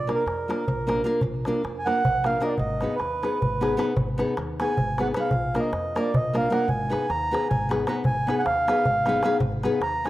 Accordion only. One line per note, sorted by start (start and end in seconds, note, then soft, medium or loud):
0.00 0.11 D5 medium
0.14 1.08 A#4 medium
1.79 1.87 G#5 medium
1.86 2.26 F#5 loud
2.26 2.43 F5 medium
2.43 2.49 D#5 medium
2.47 2.54 D5 medium
2.59 2.95 D#5 medium
2.95 3.86 B4 medium
4.62 5.01 G#5 loud
5.01 5.08 F#5 medium
5.20 5.59 F5 medium
5.59 6.00 D#5 medium
5.99 6.16 D5 medium
6.16 6.36 D#5 medium
6.37 6.52 F5 medium
6.52 6.70 F#5 loud
6.69 7.11 G#5 loud
7.10 7.48 A#5 loud
7.49 7.69 G#5 medium
7.88 7.95 A#5 medium
8.06 8.35 G#5 medium
8.39 8.46 F#5 medium
8.39 8.42 G#5 medium
8.46 9.37 F5 medium
9.82 10.06 A#5 loud
10.06 10.10 G#5 loud